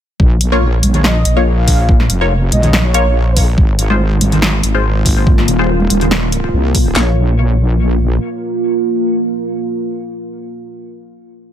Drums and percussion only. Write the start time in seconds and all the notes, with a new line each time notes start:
0.20 kick
0.41 closed hi-hat
0.83 closed hi-hat, high conga
0.94 closed hi-hat, low conga
1.04 snare
1.25 closed hi-hat
1.68 kick, open hi-hat
1.89 kick
2.00 snare
2.10 closed hi-hat
2.52 closed hi-hat, high conga
2.63 closed hi-hat, low conga
2.73 snare
2.94 closed hi-hat
3.37 kick, open hi-hat
3.58 kick
3.79 closed hi-hat
4.21 closed hi-hat, high conga
4.32 closed hi-hat, low conga
4.42 snare
4.63 closed hi-hat
5.06 kick, open hi-hat
5.27 kick
5.38 snare
5.48 closed hi-hat
5.80 high conga
5.90 closed hi-hat, high conga
6.01 closed hi-hat, low conga
6.11 snare
6.32 closed hi-hat
6.75 kick, open hi-hat
6.96 snare, clap